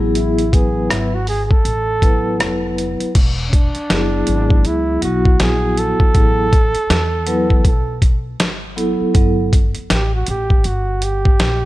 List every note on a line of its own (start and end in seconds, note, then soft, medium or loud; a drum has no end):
0.00 0.86 A1 medium
0.00 0.41 F#3 medium
0.00 0.41 B3 medium
0.00 0.41 E4 medium
0.00 0.44 G#4 loud
0.15 0.55 E4 medium
0.15 closed hi-hat medium
0.39 closed hi-hat soft
0.52 1.08 F#3 medium
0.52 1.08 B3 medium
0.52 1.08 E4 medium
0.52 0.90 G#4 medium
0.52 1.08 B4 medium
0.52 kick loud
0.52 closed hi-hat medium
0.88 1.47 G#1 medium
0.88 0.93 D#4 medium
0.88 1.16 E4 medium
0.88 cross-stick loud
0.88 closed hi-hat medium
1.14 1.28 F#4 medium
1.27 1.45 G#4 medium
1.27 open hi-hat medium
1.45 1.53 G#4 medium
1.51 2.78 A4 loud
1.51 muted upright bass stroke soft
1.51 kick medium
1.65 2.36 A1 medium
1.65 closed hi-hat medium
2.02 3.09 F#3 medium
2.02 3.09 B3 medium
2.02 3.09 E4 medium
2.02 3.09 B4 medium
2.02 kick medium
2.02 closed hi-hat medium
2.40 2.97 F1 medium
2.40 cross-stick loud
2.40 closed hi-hat medium
2.78 closed hi-hat medium
3.00 muted upright bass stroke soft
3.00 closed hi-hat soft
3.15 3.72 E1 medium
3.15 kick loud
3.15 closed hi-hat medium
3.15 crash medium
3.49 3.56 C#4 medium
3.53 4.68 D4 medium
3.53 kick loud
3.53 closed hi-hat medium
3.75 muted upright bass stroke soft
3.75 closed hi-hat soft
3.90 4.26 F#1 medium
3.90 4.96 F#3 medium
3.90 4.96 B3 medium
3.90 4.97 E4 medium
3.90 4.97 G#4 medium
3.90 snare loud
3.90 closed hi-hat loud
4.27 4.63 G#1 medium
4.27 closed hi-hat medium
4.50 kick medium
4.65 5.01 C#2 medium
4.65 5.03 E4 medium
4.65 closed hi-hat medium
5.02 5.38 B1 medium
5.02 6.09 F#3 medium
5.02 6.09 B3 medium
5.02 6.09 E4 medium
5.02 6.09 F#4 medium
5.02 5.42 F#4 medium
5.02 closed hi-hat medium
5.25 kick medium
5.40 5.97 A#1 medium
5.40 5.81 G#4 loud
5.40 snare loud
5.40 closed hi-hat medium
5.77 7.66 A4 loud
5.77 closed hi-hat medium
6.00 muted upright bass stroke soft
6.00 kick medium
6.14 6.72 A1 loud
6.14 6.43 F#3 medium
6.14 6.43 B3 medium
6.14 6.44 E4 medium
6.14 6.44 G#4 medium
6.14 kick loud
6.14 closed hi-hat medium
6.53 kick loud
6.53 closed hi-hat medium
6.75 muted upright bass stroke soft
6.75 closed hi-hat medium
6.90 7.61 E2 medium
6.90 snare loud
6.90 closed hi-hat medium
7.27 7.56 F#3 medium
7.27 7.56 B3 medium
7.27 7.56 E4 medium
7.27 7.56 B4 medium
7.27 closed hi-hat medium
7.50 kick medium
7.65 8.40 B1 medium
7.65 8.01 A4 medium
7.65 kick medium
7.65 closed hi-hat medium
8.02 kick medium
8.02 closed hi-hat medium
8.40 8.97 G#1 loud
8.40 snare loud
8.40 closed hi-hat medium
8.76 9.13 F#3 medium
8.76 9.13 B3 medium
8.76 9.13 E4 medium
8.76 9.14 A4 medium
8.76 closed hi-hat medium
9.00 muted upright bass stroke soft
9.14 9.72 G1 loud
9.14 9.43 F#3 medium
9.14 9.43 B3 medium
9.14 9.43 E4 medium
9.14 9.44 A4 medium
9.14 kick loud
9.14 closed hi-hat medium
9.53 kick loud
9.53 closed hi-hat medium
9.75 muted upright bass stroke soft
9.75 closed hi-hat soft
9.90 10.26 A1 medium
9.90 10.12 G4 medium
9.90 snare loud
9.90 closed hi-hat loud
10.14 10.27 F#4 medium
10.27 10.63 A1 loud
10.27 10.68 G4 medium
10.27 closed hi-hat medium
10.50 kick medium
10.64 11.36 G1 medium
10.64 11.05 F#4 medium
10.64 closed hi-hat medium
11.02 11.65 G4 medium
11.02 closed hi-hat medium
11.25 kick loud
11.40 11.65 A#1 medium
11.40 snare loud
11.40 closed hi-hat loud